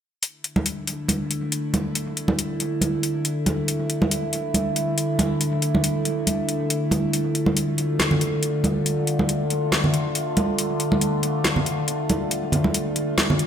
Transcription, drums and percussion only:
0.23 closed hi-hat
0.44 closed hi-hat
0.56 high conga
0.66 closed hi-hat
0.87 closed hi-hat
1.08 closed hi-hat, high conga
1.31 closed hi-hat
1.52 closed hi-hat
1.74 closed hi-hat, high conga
1.95 closed hi-hat
2.17 closed hi-hat
2.28 high conga
2.39 closed hi-hat
2.60 closed hi-hat
2.81 closed hi-hat, high conga
3.03 closed hi-hat
3.25 closed hi-hat
3.46 closed hi-hat, high conga
3.68 closed hi-hat
3.90 closed hi-hat
4.02 high conga
4.11 closed hi-hat
4.33 closed hi-hat
4.54 closed hi-hat, high conga
4.76 closed hi-hat
4.98 closed hi-hat
5.19 closed hi-hat, high conga
5.41 closed hi-hat
5.62 closed hi-hat
5.75 high conga
5.84 closed hi-hat
6.05 closed hi-hat
6.27 closed hi-hat, high conga
6.49 closed hi-hat
6.70 closed hi-hat
6.91 closed hi-hat, high conga
7.13 closed hi-hat
7.35 closed hi-hat
7.46 high conga
7.57 closed hi-hat
7.78 closed hi-hat
7.99 snare, closed hi-hat, high conga
8.11 low conga
8.21 closed hi-hat
8.43 closed hi-hat
8.64 closed hi-hat, high conga
8.86 closed hi-hat
9.07 closed hi-hat
9.19 high conga
9.29 closed hi-hat
9.50 closed hi-hat
9.72 snare, closed hi-hat, high conga
9.84 low conga
9.94 closed hi-hat
10.15 closed hi-hat
10.37 closed hi-hat, high conga
10.58 closed hi-hat
10.80 closed hi-hat
10.92 high conga
11.01 closed hi-hat
11.23 closed hi-hat
11.44 snare, closed hi-hat, high conga
11.56 low conga
11.66 closed hi-hat
11.88 closed hi-hat
12.10 closed hi-hat, high conga
12.31 closed hi-hat
12.52 closed hi-hat, low conga
12.64 high conga
12.74 closed hi-hat
12.96 closed hi-hat
13.18 snare, closed hi-hat, high conga
13.30 low conga
13.39 closed hi-hat

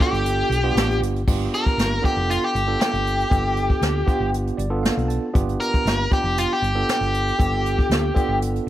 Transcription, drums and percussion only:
0.00 kick, closed hi-hat
0.14 closed hi-hat
0.26 closed hi-hat
0.52 closed hi-hat
0.77 snare, closed hi-hat
0.91 closed hi-hat
1.03 closed hi-hat
1.16 closed hi-hat
1.28 kick, crash
1.41 closed hi-hat
1.54 closed hi-hat
1.66 kick, closed hi-hat
1.79 snare, closed hi-hat
2.04 kick, closed hi-hat
2.31 closed hi-hat
2.56 closed hi-hat
2.81 snare, closed hi-hat
2.94 closed hi-hat
3.07 closed hi-hat
3.20 closed hi-hat
3.31 kick, closed hi-hat
3.57 closed hi-hat
3.70 kick
3.82 snare, closed hi-hat
4.08 kick, closed hi-hat
4.34 closed hi-hat
4.47 closed hi-hat
4.59 closed hi-hat
4.85 snare, closed hi-hat
4.98 closed hi-hat
5.10 closed hi-hat
5.35 kick, closed hi-hat
5.49 closed hi-hat
5.61 closed hi-hat
5.74 kick, closed hi-hat
5.87 snare, closed hi-hat
6.12 kick, closed hi-hat
6.37 closed hi-hat
6.63 closed hi-hat
6.89 snare, closed hi-hat
7.02 closed hi-hat
7.14 closed hi-hat
7.28 closed hi-hat
7.40 kick, closed hi-hat
7.66 closed hi-hat
7.79 kick
7.91 snare, closed hi-hat
8.16 kick, closed hi-hat
8.42 closed hi-hat
8.55 closed hi-hat

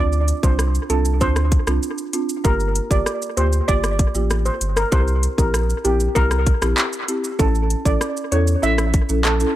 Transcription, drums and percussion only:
0.13 shaker
0.28 closed hi-hat, shaker
0.43 kick, shaker
0.59 cross-stick, shaker
0.75 shaker
0.90 closed hi-hat, shaker
1.05 shaker
1.21 kick, shaker
1.36 cross-stick, shaker
1.52 kick, closed hi-hat, shaker
1.67 cross-stick, shaker
1.83 shaker
1.98 shaker
2.13 closed hi-hat, shaker
2.29 shaker
2.45 kick, shaker
2.60 shaker
2.75 closed hi-hat, shaker
2.91 kick, shaker
3.06 cross-stick, shaker
3.22 shaker
3.37 closed hi-hat, shaker
3.53 shaker
3.68 kick, shaker
3.84 cross-stick, shaker
3.99 kick, closed hi-hat, shaker
4.15 shaker
4.30 cross-stick, shaker
4.46 shaker
4.61 closed hi-hat, shaker
4.77 cross-stick, shaker
4.92 kick, shaker
5.08 shaker
5.23 closed hi-hat, shaker
5.38 kick, shaker
5.54 cross-stick, shaker
5.70 shaker
5.85 closed hi-hat, shaker
6.00 shaker
6.16 kick, shaker
6.31 cross-stick, shaker
6.46 kick, closed hi-hat, shaker
6.62 cross-stick, shaker
6.77 clap, shaker
6.93 shaker
7.08 closed hi-hat, shaker
7.24 shaker
7.39 kick, shaker
7.55 shaker
7.70 closed hi-hat, shaker
7.85 kick, shaker
8.01 cross-stick, shaker
8.17 shaker
8.32 closed hi-hat, shaker
8.47 shaker
8.63 shaker
8.78 cross-stick, shaker
8.94 kick, closed hi-hat, shaker
9.09 shaker
9.25 cross-stick, clap, shaker
9.40 shaker

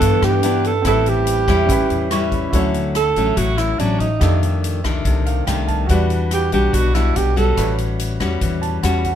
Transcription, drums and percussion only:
0.01 kick, closed hi-hat
0.22 cross-stick, closed hi-hat
0.43 closed hi-hat
0.64 closed hi-hat
0.85 kick, cross-stick, closed hi-hat
1.06 closed hi-hat
1.27 closed hi-hat
1.48 kick, cross-stick, closed hi-hat
1.69 kick, closed hi-hat
1.90 closed hi-hat
2.11 cross-stick, closed hi-hat
2.32 kick, closed hi-hat
2.53 kick, closed hi-hat
2.74 closed hi-hat
2.95 cross-stick, closed hi-hat
3.16 kick, closed hi-hat
3.37 kick, closed hi-hat
3.58 cross-stick, closed hi-hat
3.79 closed hi-hat
4.00 kick, closed hi-hat
4.21 kick, cross-stick, closed hi-hat
4.43 closed hi-hat
4.64 closed hi-hat
4.84 kick, cross-stick, closed hi-hat
5.05 kick, closed hi-hat
5.26 closed hi-hat
5.47 cross-stick, closed hi-hat
5.68 kick, closed hi-hat
5.89 kick, closed hi-hat
6.10 closed hi-hat
6.31 cross-stick, closed hi-hat
6.52 kick, closed hi-hat
6.73 kick, closed hi-hat
6.95 cross-stick, closed hi-hat
7.16 closed hi-hat
7.37 kick, closed hi-hat
7.57 kick, cross-stick, closed hi-hat
7.78 closed hi-hat
7.99 closed hi-hat
8.20 kick, cross-stick, closed hi-hat
8.41 kick, closed hi-hat
8.63 closed hi-hat
8.83 cross-stick, closed hi-hat
9.04 kick, closed hi-hat

